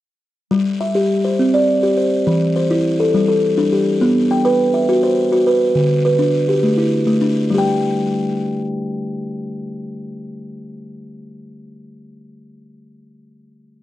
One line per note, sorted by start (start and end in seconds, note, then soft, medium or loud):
0.51 0.80 G3 medium
0.81 1.24 E5 medium
0.95 1.24 G4 medium
1.24 1.54 C5 medium
1.39 1.68 C4 medium
1.54 1.98 D5 medium
1.83 2.12 G4 medium
1.97 2.41 C5 medium
2.27 2.56 E3 medium
2.56 3.00 C5 medium
2.71 3.00 E4 medium
3.00 3.27 A4 medium
3.14 3.43 G3 medium
3.28 3.72 A4 medium
3.58 3.87 D4 medium
3.72 4.16 G4 medium
4.01 4.30 B3 medium
4.31 4.74 G5 medium
4.45 4.74 B4 medium
4.74 5.18 E5 medium
4.89 5.18 F#4 medium
5.03 5.47 C5 medium
5.32 5.61 F#4 medium
5.47 5.90 B4 medium
5.75 6.05 D3 medium
6.05 6.49 B4 medium
6.19 6.48 D4 medium
6.49 6.92 G4 medium
6.63 6.92 A3 medium
6.78 7.21 E4 medium
7.07 7.36 A3 medium
7.21 7.65 D4 medium
7.50 12.26 G3 medium
7.50 12.30 G4 medium
7.58 12.34 G5 medium